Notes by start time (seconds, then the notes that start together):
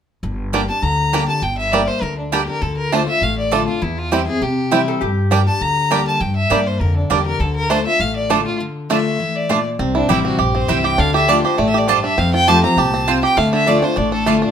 0.23 G1 G2
0.53 G3 A#3 D4 G4 D5 G5
0.69 D4 G4 A5
0.82 D2 D3 A#5
1.13 G3 A#3 D4 G4 D5 G5
1.28 D4 G4 A5
1.42 G1 G2 G5
1.58 E5
1.72 G3 A#3 D4 G4 D5 G5
1.87 C5
2.02 D2 D3 A#4
2.18 D4
2.32 G3 A#3 D4 G4 D5 G5
2.47 D4 G4 A#4
2.62 D2 D3 A4
2.77 A#4
2.92 D3 A3 D4 F4 C5 D5 A5
3.07 D4 F4 E5
3.21 A1 A2 F5
3.39 D5
3.51 D3 A3 D4 F4 A4 D5 A5
3.67 D4 F4
3.82 E2 E4
3.98 F4
4.12 E3 G3 C4 E4 G4 C5 G5
4.27 C4 E4 G#4
4.41 C3 G4
4.71 E3 G3 C4 E4 C5 G5
4.88 A4
5.01 G2 G4
5.31 G3 A#3 D4 G4 D5 G5
5.47 D4 G4 A5
5.61 D2 D3 A#5
5.91 G3 A#3 D4 G4 D5 G5
6.07 A5
6.21 G2 G5
6.36 E5
6.50 G2 G3 A#3 D4 G4 D5 G5
6.67 C5
6.80 F2 D3 A#4
6.97 D4
7.10 E2 G3 A#3 D4 G4 D5 G5
7.26 D4 G4 A#4
7.40 D2 D3 A4
7.56 A#4
7.70 D3 A3 D4 F4 C5 D5 A5
7.86 D4 F4 E5
8.00 A1 A2 F5
8.16 D5
8.30 D3 A3 D4 F4 A4 D5 A5
8.45 D4 F4
8.60 D3
8.90 D3 A3 D4 F4 D5 E5 A5
9.20 E3
9.36 D5
9.49 A#2 A3 D4 F4 D5 A5
9.79 C2 C3 C4
9.95 D4 E4
10.09 A1 E3 G3 C4 E4 G4 C5 G5
10.25 C4 F#4
10.39 A#1 G2 G4
10.55 C4 C5
10.68 C2 E3 G3 C4 E4 C5 E5 G5
10.84 G4 G5
10.98 D2 D3 D4 F5
11.14 G4 E5
11.28 D3 A3 D4 F4 D5 A5
11.44 D4 F4 G4 C5
11.58 A1 A2 A3 D5
11.68 E5
11.74 G4 D5
11.88 G2 A3 D4 F4 C5 D5 A5
12.04 D4 E5
12.18 F2 C4 F5
12.33 F4 G5
12.48 F3 A3 C4 F4 G4 C5 A5
12.63 C4 F4 A#5
12.77 C2 A#2 G4 A5
12.94 C4
13.08 C3 C4 F4 C5 A5
13.23 G4 G5
13.37 D2 D3 A3 F5
13.53 D3 E5
13.67 D3 A3 D4 F4 D5 A5
13.82 D4 F4 C5
13.96 A1 A2 D4 D5
14.12 D4 A4
14.26 D3 A3 D4 F4 D5 A5
14.42 D4 F4